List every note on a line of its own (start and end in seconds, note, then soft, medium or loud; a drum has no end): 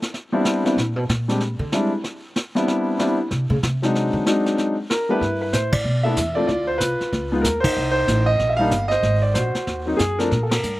0.02 snare soft
0.14 brush sweep soft
0.14 snare soft
0.32 0.62 G3 medium
0.32 0.63 B3 medium
0.32 0.63 C4 medium
0.32 0.63 D4 medium
0.32 0.63 E4 medium
0.45 snare medium
0.64 0.75 G3 medium
0.64 0.76 B3 medium
0.64 0.76 C4 medium
0.64 0.76 D4 medium
0.64 0.76 E4 medium
0.64 snare soft
0.77 0.96 A#2 medium
0.77 brush sweep soft
0.77 snare soft
0.96 1.08 B2 medium
1.09 1.57 A#2 medium
1.09 snare medium
1.28 1.39 G3 medium
1.28 1.39 G#3 medium
1.28 1.39 C4 medium
1.28 1.39 D4 medium
1.28 1.40 G4 medium
1.28 snare soft
1.40 brush sweep medium
1.40 snare soft
1.59 1.71 D3 loud
1.72 1.90 G3 medium
1.72 1.90 G#3 medium
1.72 1.91 C4 medium
1.72 1.91 D4 medium
1.72 1.91 E4 medium
1.72 snare medium
2.04 brush sweep medium
2.04 snare medium
2.36 snare medium
2.55 2.96 G3 medium
2.55 2.96 B3 medium
2.55 2.97 C4 medium
2.55 2.97 D4 medium
2.55 2.97 E4 medium
2.55 snare soft
2.68 brush sweep medium
2.68 snare soft
2.99 3.17 G3 medium
2.99 3.17 B3 medium
2.99 3.17 C4 medium
2.99 3.17 D4 medium
2.99 3.17 E4 medium
2.99 snare medium
3.31 3.49 C3 medium
3.31 brush sweep medium
3.31 snare medium
3.50 3.62 C#3 loud
3.63 4.11 C3 medium
3.63 snare medium
3.82 4.24 F#3 medium
3.82 4.24 G#3 medium
3.82 4.24 C4 medium
3.82 4.24 D4 medium
3.82 4.24 D#4 medium
3.82 snare soft
3.95 brush sweep medium
3.95 snare soft
4.13 4.21 D3 loud
4.26 4.74 F#3 medium
4.26 4.73 G#3 medium
4.26 4.74 C4 medium
4.26 4.74 D4 medium
4.26 4.74 D#4 medium
4.26 snare medium
4.46 snare soft
4.58 brush sweep medium
4.58 snare soft
4.90 5.10 A#4 medium
4.90 snare medium
5.09 5.20 G3 medium
5.09 5.20 A3 medium
5.09 5.21 B3 medium
5.09 5.21 D4 medium
5.09 5.71 E4 medium
5.09 5.21 G4 medium
5.09 5.40 B4 medium
5.21 5.52 G2 medium
5.21 brush sweep soft
5.21 kick soft
5.21 snare soft
5.42 5.54 B4 medium
5.53 5.84 A2 medium
5.53 5.72 C5 medium
5.53 kick soft
5.53 snare medium
5.53 hi-hat pedal medium
5.72 6.02 D5 medium
5.72 kick medium
5.72 ride medium
5.84 6.16 B2 medium
5.84 brush sweep soft
6.03 6.16 A3 medium
6.03 6.16 B3 medium
6.03 6.16 D4 medium
6.03 6.16 E4 medium
6.03 6.37 E5 medium
6.16 6.48 E2 medium
6.16 kick soft
6.16 snare medium
6.16 hi-hat pedal medium
6.35 6.47 A3 medium
6.35 6.48 C4 medium
6.35 6.48 E4 medium
6.35 6.48 F4 medium
6.35 6.46 D5 medium
6.47 6.79 D2 medium
6.47 6.79 F4 medium
6.47 6.67 D5 medium
6.47 brush sweep soft
6.47 kick soft
6.47 snare soft
6.67 6.79 C5 medium
6.78 6.99 C2 medium
6.78 7.32 F4 medium
6.78 7.45 B4 medium
6.78 kick soft
6.78 snare medium
6.78 hi-hat pedal medium
7.00 muted upright bass stroke soft
7.00 snare soft
7.13 7.43 C#2 medium
7.13 brush sweep medium
7.13 kick soft
7.13 snare soft
7.32 7.43 G#3 medium
7.32 7.43 B3 medium
7.32 7.43 D#4 medium
7.32 7.44 F4 medium
7.42 7.75 D#2 loud
7.42 7.64 A#4 medium
7.42 kick soft
7.42 snare medium
7.42 hi-hat pedal medium
7.60 8.24 D#4 medium
7.60 7.90 C5 medium
7.60 kick medium
7.60 ride medium
7.76 8.07 C2 medium
7.76 brush sweep soft
7.91 8.27 C5 loud
8.08 8.39 A1 medium
8.08 kick soft
8.08 snare medium
8.08 hi-hat pedal medium
8.26 8.51 D#5 loud
8.39 8.71 A#1 medium
8.39 brush sweep soft
8.39 kick soft
8.39 snare soft
8.49 8.59 E5 medium
8.57 8.70 G3 medium
8.57 8.71 A#3 medium
8.57 8.71 D4 medium
8.57 8.88 F5 loud
8.61 8.71 D#4 medium
8.71 9.02 G1 medium
8.71 kick soft
8.71 snare medium
8.71 hi-hat pedal medium
8.88 9.33 C5 medium
8.88 9.20 D#5 loud
8.88 snare soft
9.03 9.34 G#1 medium
9.03 brush sweep medium
9.03 kick soft
9.03 snare soft
9.22 9.34 D5 medium
9.34 9.54 A#1 medium
9.34 9.95 C5 medium
9.34 kick soft
9.34 snare medium
9.34 hi-hat pedal soft
9.38 9.97 F#4 medium
9.55 muted upright bass stroke soft
9.55 snare medium
9.67 9.98 D#2 medium
9.67 brush sweep soft
9.67 kick soft
9.67 snare soft
9.86 9.98 F#3 medium
9.86 9.98 A#3 medium
9.86 9.98 C4 medium
9.86 9.99 D#4 medium
9.97 10.30 F#2 medium
9.97 10.17 G#4 medium
9.97 kick soft
9.97 snare medium
9.97 hi-hat pedal medium
10.19 10.30 F3 medium
10.19 10.30 A3 medium
10.19 10.30 C4 medium
10.19 10.30 D4 medium
10.19 10.41 A#4 medium
10.19 snare soft
10.31 10.62 A#2 medium
10.31 brush sweep soft
10.31 kick soft
10.31 snare soft
10.43 10.52 A4 medium
10.50 10.80 A#4 medium
10.50 snare medium
10.50 ride medium
10.63 10.80 G2 medium
10.63 hi-hat pedal medium